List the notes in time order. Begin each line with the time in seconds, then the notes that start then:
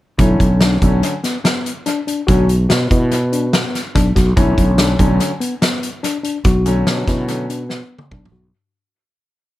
0.18 B1 D3 F#3 A3 C#4 E4, kick, closed hi-hat
0.40 B1, kick, closed hi-hat
0.61 D4, snare, closed hi-hat
0.82 B1 D3 F#3 A3 C#4 D4, kick, closed hi-hat
1.03 closed hi-hat
1.24 B3, snare, closed hi-hat
1.44 B3, snare, closed hi-hat
1.66 closed hi-hat
1.86 D4, closed hi-hat
2.07 D4, closed hi-hat
2.27 B1 D3 F#3 A3 C#4 F#4, kick, closed hi-hat
2.49 closed hi-hat
2.69 B2 F#4, snare, closed hi-hat
2.90 B2 E4, kick, closed hi-hat
3.11 closed hi-hat
3.33 D4, closed hi-hat
3.53 B3, snare, closed hi-hat
3.75 snare, closed hi-hat
3.95 B1 D4, kick, closed hi-hat
4.16 B1 F#4, kick, snare, closed hi-hat
4.36 B1 D3 F#3 A3 C#4 E4, kick, closed hi-hat
4.58 B1, kick, closed hi-hat
4.78 D4, snare, closed hi-hat
4.99 B1 D3 F#3 A3 C#4 D4, kick, closed hi-hat
5.20 closed hi-hat
5.40 B3, closed hi-hat
5.62 B3, snare, closed hi-hat
5.83 closed hi-hat
6.03 D4, closed hi-hat
6.24 D4, closed hi-hat
6.44 B1 F#4, kick, closed hi-hat
6.66 D3 F#3 A3 C#4, closed hi-hat
6.86 B2 F#4, snare, closed hi-hat
7.08 B2 E4, kick, snare, closed hi-hat
7.28 D3 F#3 A3 C#4, closed hi-hat
7.49 D4, closed hi-hat
7.70 B3, snare
7.99 high tom
8.11 B1 D4, kick, mid tom
8.25 mid tom
8.32 B1 F#4